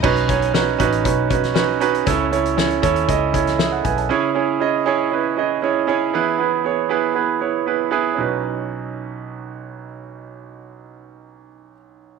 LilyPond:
<<
  \new Staff \with { instrumentName = "Grand piano" } { \time 4/4 \key b \mixolydian \tempo 4 = 118 << { r1 | r2. <gis' e''>16 <a' fis''>16 <b' gis''>16 <cis'' a''>16~ | <cis'' a''>16 r2. r8. | r1 |
r1 | r1 | } \\ { <cis' dis' fis' b'>8 <cis' dis' fis' cis''>8 <cis' dis' fis' b'>8 <cis' dis' fis' b'>8 <cis' dis' fis' b'>8 <cis' dis' fis' b'>8 <cis' dis' fis' b'>8 <cis' dis' fis' b'>8 | <cis' e' a' cis''>8 <cis' e' a' cis''>8 <cis' e' a' cis''>8 <cis' e' a' cis''>8 <cis' e' a' dis''>8 <cis' e' a' cis''>8 r4 | <cis' e' gis' cis''>8 <cis' e' gis' cis''>8 <cis' e' gis' dis''>8 <cis' e' gis' cis''>8 <cis' e' gis' b'>8 <cis' e' gis' dis''>8 <cis' e' gis' cis''>8 <cis' e' gis' cis''>8 | <b e' gis' b'>8 <b e' gis' b'>8 <b e' gis' cis''>8 <b e' gis' b'>8 <b e' gis' b'>8 <b e' gis' cis''>8 <b e' gis' b'>8 <b e' gis' b'>8 |
<cis' dis' fis' b'>1~ | <cis' dis' fis' b'>1 | } >> }
  \new Staff \with { instrumentName = "Grand piano" } { \clef bass \time 4/4 \key b \mixolydian b,4. r2 r8 | cis4. r2 r8 | cis4. r2 r8 | e4. r2 r8 |
b,,1~ | b,,1 | }
  \new Staff \with { instrumentName = "Fingered electric bass" } { \clef bass \time 4/4 \key b \mixolydian b,,4. a,,8 b,,2 | cis,4. dis,8 cis,4. b,,8 | r1 | r1 |
r1 | r1 | }
  \new DrumStaff \with { instrumentName = "Drums" } \drummode { \time 4/4 <cymc bd>16 hh16 <hh bd>16 hh16 sn8 <hh bd>16 hh16 <hh bd>8 <hh bd>16 <hh sn>16 sn8 hh16 hh16 | <hh bd>8 hh16 hh16 sn16 hh16 <hh bd>16 hh16 <hh bd>8 <hh bd>16 <hh sn>16 sn8 <hh bd>16 hh16 | r4 r4 r4 r4 | r4 r4 r4 r4 |
r4 r4 r4 r4 | r4 r4 r4 r4 | }
>>